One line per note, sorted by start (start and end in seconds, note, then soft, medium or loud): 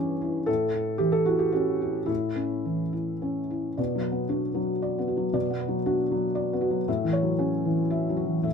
0.00 0.44 G2 soft
0.00 0.51 E3 soft
0.00 0.50 C#4 soft
0.00 0.22 E4 soft
0.00 0.51 G4 medium
0.22 0.48 E4 soft
0.46 2.05 A2 soft
0.46 0.99 A4 medium
0.74 1.16 E4 soft
0.98 1.42 E3 soft
0.98 1.12 G4 medium
1.12 1.26 A4 medium
1.26 1.70 E4 soft
1.26 1.39 F#4 medium
1.39 1.53 G4 medium
1.52 1.98 C#4 soft
1.52 2.09 F#4 medium
1.82 2.04 E4 soft
2.06 3.73 A2 soft
2.06 2.91 E4 soft
2.35 2.82 C#4 soft
2.65 3.11 E3 soft
2.93 3.39 E4 soft
3.22 3.67 C#4 soft
3.50 3.78 E4 soft
3.77 5.31 B2 soft
3.77 4.20 D5 soft
3.95 4.24 F#3 soft
4.04 4.46 B4 soft
4.12 4.41 B3 soft
4.29 4.58 D4 soft
4.29 4.72 F#4 soft
4.54 4.98 F#3 soft
4.82 5.24 D5 soft
4.98 5.27 B3 soft
5.08 5.49 F#4 soft
5.17 5.44 F#3 soft
5.33 6.83 B2 soft
5.33 5.75 D5 soft
5.50 5.78 B3 soft
5.59 6.00 B4 soft
5.68 5.95 F#3 soft
5.86 6.13 D4 soft
5.86 6.26 F#4 soft
6.11 6.52 F#3 soft
6.35 6.77 D5 soft
6.53 6.81 B3 soft
6.61 6.87 F#4 soft
6.70 6.88 F#3 soft
6.88 8.41 A2 soft
6.88 7.29 E5 soft
7.04 7.32 E3 soft
7.13 7.54 C#5 soft
7.22 7.49 F#3 soft
7.39 7.66 C#4 soft
7.39 7.80 F#4 soft
7.65 8.07 E3 soft
7.90 8.34 E5 soft
8.09 8.38 F#3 soft
8.17 8.54 F#4 soft
8.26 8.54 E3 soft
8.43 8.54 A2 soft
8.43 8.54 E5 soft